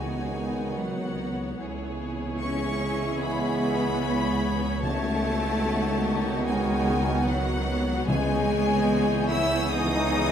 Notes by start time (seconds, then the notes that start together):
Already playing: C#2 D#3 G#3 B3 D#4 F#4 C#5 G#5
0.76 F#3 F#5
1.58 C#2 E3 G#3 E4 G#4 C#5 C#6
2.39 C#4 C#6 G#6
3.19 B3 B5
4.82 C#3 D#3 A3 B3 D#4 F#4 A5
6.32 G6
6.45 G#3 G#5
7.26 F#3 F#5
8.06 C#2 C#3 E3 G#3 B3 G#4 C#5 G#5 C#6 G6
9.29 E4 E6
9.69 D#4 D#6